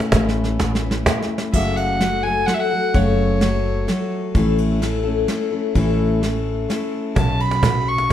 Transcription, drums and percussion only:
0.00 cajon slap medium
0.12 cajon bass medium
0.12 kick medium
0.12 cajon slap medium
0.12 snare soft
0.28 snare soft
0.36 cajon slap soft
0.44 snare soft
0.59 cajon bass medium
0.59 snare soft
0.59 cajon slap medium
0.75 snare medium
0.91 snare medium
1.06 cajon bass medium
1.06 cajon slap medium
1.06 snare medium
1.22 snare soft
1.30 cajon slap soft
1.38 snare medium
1.53 kick medium
1.53 crash medium
1.77 ride soft
2.01 snare medium
2.01 ride soft
2.48 snare medium
2.48 ride soft
2.94 kick medium
2.94 ride soft
3.41 snare medium
3.41 ride soft
3.88 snare medium
3.88 ride soft
4.35 kick medium
4.35 ride medium
4.58 ride soft
4.82 snare medium
4.82 ride soft
5.28 snare medium
5.28 ride soft
5.75 kick medium
5.75 ride soft
6.23 snare medium
6.23 ride soft
6.70 snare medium
6.70 ride soft
7.16 cajon bass medium
7.16 kick medium
7.16 ride soft
7.40 ride soft
7.51 cajon slap medium
7.63 cajon bass medium
7.63 snare medium
7.63 ride soft
7.98 cajon slap medium

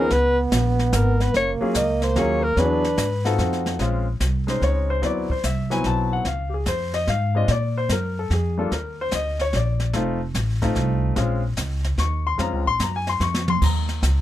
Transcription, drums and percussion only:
0.10 brush sweep soft
0.10 snare soft
0.52 snare medium
0.52 hi-hat pedal medium
0.79 snare soft
0.93 snare medium
0.93 hi-hat pedal medium
1.20 snare soft
1.34 brush sweep soft
1.34 snare soft
1.75 snare medium
1.75 hi-hat pedal medium
2.02 snare soft
2.16 snare soft
2.57 brush sweep soft
2.57 snare soft
2.84 snare soft
2.98 snare medium
2.98 hi-hat pedal medium
3.25 snare soft
3.39 snare soft
3.53 snare soft
3.66 snare soft
3.79 brush sweep soft
3.79 snare soft
4.20 snare medium
4.20 hi-hat pedal medium
4.48 snare soft
4.62 snare soft
5.03 brush sweep soft
5.03 snare soft
5.30 kick medium
5.43 snare medium
5.43 hi-hat pedal medium
5.71 snare soft
5.84 snare soft
6.25 brush sweep medium
6.25 snare soft
6.66 snare medium
6.66 hi-hat pedal medium
6.94 snare soft
7.07 snare soft
7.48 brush sweep soft
7.48 snare soft
7.89 snare medium
7.89 hi-hat pedal medium
8.31 snare soft
8.72 brush sweep soft
8.72 snare soft
9.11 snare medium
9.11 hi-hat pedal medium
9.39 snare soft
9.53 snare soft
9.80 snare soft
9.93 brush sweep soft
9.93 snare soft
10.35 snare medium
10.35 hi-hat pedal soft
10.62 kick soft
10.62 snare soft
10.76 snare soft
11.16 brush sweep medium
11.16 snare soft
11.57 snare medium
11.57 hi-hat pedal medium
11.84 snare soft
11.98 snare soft
12.39 brush sweep soft
12.39 snare soft
12.79 snare medium
12.79 hi-hat pedal medium
13.07 snare soft
13.21 snare medium
13.34 snare medium
13.48 mid tom medium
13.62 brush sweep soft
13.62 kick medium
13.62 snare soft
13.62 crash medium
13.89 snare soft
14.03 snare medium
14.03 hi-hat pedal medium

